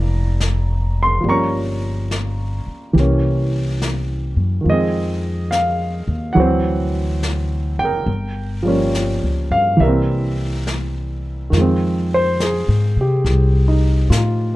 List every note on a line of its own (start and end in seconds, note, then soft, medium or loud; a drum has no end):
0.00 1.20 F1 medium
0.00 1.24 E3 soft
0.00 1.25 A3 soft
0.00 1.24 A#3 soft
0.00 1.25 C4 soft
0.00 1.26 D4 soft
0.00 1.26 E4 soft
0.00 1.24 D5 medium
0.00 1.27 A5 medium
0.00 1.04 A#5 medium
0.40 snare soft
0.40 hi-hat pedal soft
1.03 1.28 C6 medium
1.21 2.63 G1 medium
1.21 2.93 F3 soft
1.21 2.95 G3 soft
1.26 2.96 A#3 soft
1.26 2.93 A#5 medium
1.26 2.94 C#6 medium
1.26 brush sweep soft
1.30 2.98 C#4 soft
2.11 snare soft
2.11 hi-hat pedal soft
2.67 muted upright bass stroke soft
2.93 4.33 C2 medium
2.93 4.64 E3 soft
2.93 4.65 G4 soft
2.98 4.67 A#3 soft
2.98 4.68 C#4 soft
2.98 brush sweep soft
2.98 snare soft
3.82 snare soft
3.82 hi-hat pedal soft
4.36 4.63 F#2 soft
4.61 6.34 D#3 soft
4.61 6.36 F3 soft
4.65 6.04 F2 medium
4.65 6.38 G#3 soft
4.65 brush sweep soft
4.70 6.39 C4 soft
4.70 6.36 G#4 soft
4.70 5.55 D#5 medium
5.51 6.32 F5 medium
5.51 snare soft
5.51 hi-hat pedal soft
6.08 6.34 D#2 medium
6.33 7.76 D2 medium
6.33 8.07 E3 soft
6.33 8.08 F#3 soft
6.33 7.74 F#5 medium
6.38 8.10 C4 medium
6.38 8.05 C5 soft
6.38 brush sweep soft
7.23 snare soft
7.23 hi-hat pedal soft
7.79 8.05 F#1 soft
7.79 8.89 G5 medium
7.85 9.50 A#4 medium
8.06 9.18 G1 medium
8.06 brush sweep soft
8.63 9.79 F3 soft
8.63 9.79 G3 soft
8.63 9.80 A#3 soft
8.68 9.81 C#4 medium
8.95 snare soft
8.95 hi-hat pedal soft
9.23 9.49 C#2 soft
9.51 9.78 G2 medium
9.51 9.78 F5 medium
9.77 11.49 C2 medium
9.77 11.52 E3 soft
9.77 11.54 G3 soft
9.77 11.21 E5 medium
9.77 brush sweep soft
9.82 11.55 A#3 soft
9.82 11.51 A#4 soft
9.88 11.57 C4 soft
10.67 snare soft
10.67 hi-hat pedal soft
11.50 12.64 F2 medium
11.50 14.56 D#3 soft
11.50 14.56 F3 soft
11.50 brush sweep soft
11.50 snare soft
11.57 14.56 G#3 soft
11.61 14.56 C4 soft
12.14 12.41 C5 medium
12.40 12.95 G#4 medium
12.40 snare soft
12.40 hi-hat pedal soft
12.68 12.95 G#2 medium
12.97 13.23 C3 medium
13.01 13.81 G4 soft
13.25 14.07 C2 medium
13.25 brush sweep soft
13.25 snare soft
13.68 14.28 D#4 soft
14.10 14.56 A2 medium
14.10 14.56 F4 soft
14.10 snare soft
14.10 hi-hat pedal medium